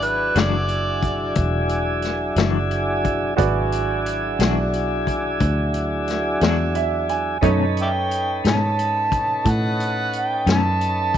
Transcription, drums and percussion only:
0.02 closed hi-hat
0.36 snare, closed hi-hat
0.69 closed hi-hat
1.02 kick, closed hi-hat
1.35 kick, closed hi-hat
1.69 closed hi-hat
2.02 snare, closed hi-hat
2.36 snare, closed hi-hat
2.71 closed hi-hat
3.05 kick, closed hi-hat
3.38 kick, closed hi-hat
3.72 closed hi-hat
4.06 closed hi-hat
4.40 snare, closed hi-hat
4.73 closed hi-hat
5.07 kick, closed hi-hat
5.40 kick, closed hi-hat
5.74 closed hi-hat
6.08 snare, closed hi-hat
6.41 snare, closed hi-hat
6.75 closed hi-hat
7.09 closed hi-hat
7.43 kick, closed hi-hat
7.77 closed hi-hat
8.11 closed hi-hat
8.45 snare, closed hi-hat
8.79 closed hi-hat
9.12 kick, closed hi-hat
9.45 kick, closed hi-hat
9.80 closed hi-hat
10.13 closed hi-hat
10.47 snare, closed hi-hat
10.81 closed hi-hat
11.14 kick

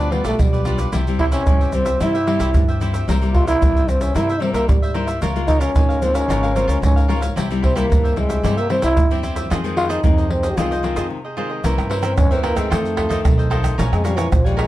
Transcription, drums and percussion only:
0.00 pandeiro, shaker
0.12 pandeiro
0.25 pandeiro, shaker
0.39 pandeiro, shaker, surdo
0.54 pandeiro, shaker
0.65 pandeiro, shaker
0.78 pandeiro, shaker
0.93 pandeiro, shaker, surdo
1.07 pandeiro, shaker
1.19 pandeiro, surdo
1.32 pandeiro, shaker
1.47 pandeiro, shaker, surdo
1.61 pandeiro, shaker
1.72 pandeiro, shaker
1.86 pandeiro, shaker
2.01 pandeiro, shaker, surdo
2.15 pandeiro, shaker
2.27 pandeiro
2.40 pandeiro, shaker
2.54 pandeiro, shaker, surdo
2.69 pandeiro, shaker
2.81 pandeiro, shaker
2.94 pandeiro, shaker
3.09 pandeiro, shaker, surdo
3.23 pandeiro, shaker
3.34 pandeiro, surdo
3.48 pandeiro, shaker
3.62 pandeiro, shaker, surdo
3.77 pandeiro, shaker
3.89 pandeiro, shaker
4.01 pandeiro, shaker
4.15 pandeiro, shaker, surdo
4.29 pandeiro, shaker
4.42 pandeiro
4.54 pandeiro, shaker
4.69 pandeiro, shaker, surdo
4.83 pandeiro, shaker
4.95 pandeiro
5.08 pandeiro, shaker
5.22 pandeiro, shaker, surdo
5.36 pandeiro, shaker
5.48 pandeiro, shaker, surdo
5.61 pandeiro, shaker
5.76 pandeiro, shaker, surdo
5.90 pandeiro, shaker
6.02 pandeiro, shaker
6.15 pandeiro, shaker
6.30 pandeiro, shaker, surdo
6.44 pandeiro, shaker
6.56 pandeiro, shaker
6.69 pandeiro, shaker
6.83 pandeiro, shaker, surdo
6.97 pandeiro, shaker
7.10 pandeiro
7.22 pandeiro, shaker
7.37 pandeiro, shaker, surdo
7.51 pandeiro, shaker
7.64 pandeiro, surdo
7.77 pandeiro, shaker
7.92 pandeiro, shaker, surdo
8.05 pandeiro, shaker
8.17 pandeiro
8.30 pandeiro, shaker
8.44 pandeiro, shaker, surdo
8.58 pandeiro, shaker
8.70 pandeiro
8.82 pandeiro, shaker
8.97 pandeiro, shaker, surdo
9.11 pandeiro, shaker
9.23 pandeiro, shaker
9.36 pandeiro, shaker
9.51 pandeiro, shaker, surdo
9.65 pandeiro, shaker
9.77 pandeiro
9.90 pandeiro, shaker
10.04 pandeiro, shaker, surdo
10.18 pandeiro, shaker
10.30 pandeiro
10.43 pandeiro, shaker
10.58 pandeiro, shaker, surdo
10.72 pandeiro, shaker
10.84 pandeiro
10.96 pandeiro, shaker
11.64 pandeiro, shaker, surdo
11.78 pandeiro, tamborim, shaker
11.91 pandeiro
12.03 pandeiro, tamborim, shaker
12.18 pandeiro, tamborim, shaker, surdo
12.32 pandeiro, shaker
12.44 pandeiro, tamborim
12.57 pandeiro, tamborim, shaker, surdo
12.72 pandeiro, tamborim, shaker, surdo
12.85 pandeiro, shaker
12.97 pandeiro, tamborim, surdo
13.10 pandeiro, shaker, surdo
13.25 pandeiro, tamborim, shaker, surdo
13.39 pandeiro, shaker
13.51 pandeiro, tamborim
13.64 pandeiro, tamborim, shaker, surdo
13.79 pandeiro, shaker, surdo
13.93 pandeiro, tamborim, shaker
14.05 pandeiro, shaker
14.18 pandeiro, tamborim, shaker
14.32 pandeiro, tamborim, shaker, surdo
14.47 pandeiro, shaker
14.59 pandeiro, tamborim

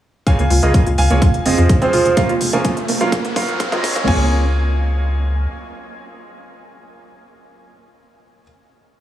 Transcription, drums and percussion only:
0.27 kick, closed hi-hat
0.39 closed hi-hat
0.50 open hi-hat
0.63 closed hi-hat
0.74 kick, closed hi-hat
0.87 closed hi-hat
0.98 open hi-hat
1.10 closed hi-hat
1.22 kick, closed hi-hat
1.34 closed hi-hat
1.46 open hi-hat
1.58 closed hi-hat
1.69 kick, closed hi-hat
1.82 closed hi-hat
1.93 open hi-hat
2.05 closed hi-hat
2.17 kick, closed hi-hat
2.29 closed hi-hat
2.41 open hi-hat
2.53 closed hi-hat
2.65 kick, closed hi-hat
2.77 closed hi-hat
2.88 open hi-hat
3.01 closed hi-hat
3.12 kick, closed hi-hat
3.25 closed hi-hat
3.36 kick, open hi-hat
3.48 closed hi-hat
3.60 kick, closed hi-hat
3.72 kick, closed hi-hat
3.84 kick, open hi-hat
3.96 kick
4.08 kick, crash

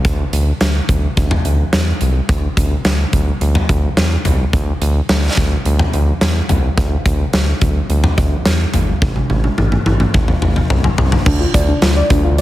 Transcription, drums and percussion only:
0.05 kick, closed hi-hat
0.33 closed hi-hat
0.61 snare, closed hi-hat
0.89 kick, closed hi-hat
1.17 kick, closed hi-hat
1.31 mid tom
1.45 closed hi-hat
1.73 snare, closed hi-hat
2.01 closed hi-hat
2.29 kick, closed hi-hat
2.57 kick, closed hi-hat
2.85 snare, closed hi-hat
3.13 kick, closed hi-hat
3.41 closed hi-hat
3.55 mid tom
3.69 kick, closed hi-hat
3.97 snare, closed hi-hat
4.25 closed hi-hat, mid tom
4.53 kick, closed hi-hat
4.82 closed hi-hat
5.09 snare, closed hi-hat
5.37 kick, closed hi-hat
5.66 closed hi-hat
5.79 mid tom
5.93 closed hi-hat
6.21 snare, closed hi-hat
6.49 closed hi-hat, mid tom
6.78 kick, closed hi-hat
7.06 kick, closed hi-hat
7.33 snare, closed hi-hat
7.61 kick, closed hi-hat
7.90 closed hi-hat
8.04 mid tom
8.18 kick, closed hi-hat
8.46 snare, closed hi-hat
8.74 closed hi-hat, mid tom
9.02 kick, high tom
9.16 high tom
9.30 high tom
9.44 high tom
9.58 mid tom
9.72 mid tom
9.86 mid tom
10.00 mid tom
10.14 kick, mid tom
10.28 mid tom
10.42 mid tom
10.56 mid tom
10.70 floor tom
10.84 floor tom
10.98 floor tom
11.12 floor tom
11.26 kick, crash
11.54 kick, closed hi-hat
11.82 snare, closed hi-hat
12.10 kick, closed hi-hat

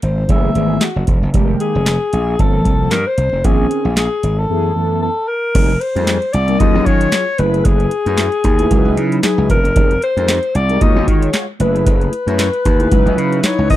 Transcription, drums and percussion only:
0.02 closed hi-hat
0.29 kick, closed hi-hat
0.55 closed hi-hat
0.81 snare, clap, closed hi-hat
1.07 kick, closed hi-hat
1.34 kick, closed hi-hat
1.60 closed hi-hat
1.86 snare, clap, closed hi-hat
2.13 closed hi-hat
2.39 kick, closed hi-hat
2.65 kick, closed hi-hat
2.91 snare, clap, closed hi-hat
3.18 closed hi-hat
3.44 kick, closed hi-hat
3.71 closed hi-hat
3.97 snare, clap, closed hi-hat
4.23 closed hi-hat
5.55 kick, closed hi-hat, crash
5.70 closed hi-hat
5.81 closed hi-hat
5.96 closed hi-hat
6.07 snare, clap, closed hi-hat
6.22 closed hi-hat
6.33 closed hi-hat
6.48 closed hi-hat
6.60 kick, closed hi-hat
6.86 kick, closed hi-hat
7.01 closed hi-hat
7.12 snare, clap, closed hi-hat
7.38 closed hi-hat
7.54 closed hi-hat
7.65 kick, closed hi-hat
7.80 closed hi-hat
7.91 closed hi-hat
8.06 closed hi-hat
8.18 snare, clap, closed hi-hat
8.32 closed hi-hat
8.44 kick, closed hi-hat
8.59 closed hi-hat
8.71 kick, closed hi-hat
8.97 closed hi-hat
9.12 closed hi-hat
9.23 snare, clap, closed hi-hat
9.49 kick, closed hi-hat
9.65 closed hi-hat
9.76 kick, closed hi-hat
9.91 closed hi-hat
10.02 closed hi-hat
10.17 closed hi-hat
10.28 snare, clap, closed hi-hat
10.43 closed hi-hat
10.55 closed hi-hat
10.69 closed hi-hat
10.81 kick, closed hi-hat
11.07 kick, closed hi-hat
11.22 closed hi-hat
11.33 snare, clap, closed hi-hat
11.60 closed hi-hat
11.76 closed hi-hat
11.86 kick, closed hi-hat
12.01 closed hi-hat
12.13 closed hi-hat
12.28 closed hi-hat
12.39 snare, clap, closed hi-hat
12.53 closed hi-hat
12.65 kick, closed hi-hat
12.80 closed hi-hat
12.91 kick, closed hi-hat
13.07 closed hi-hat
13.18 closed hi-hat
13.33 closed hi-hat
13.43 snare, clap, closed hi-hat
13.70 kick, open hi-hat

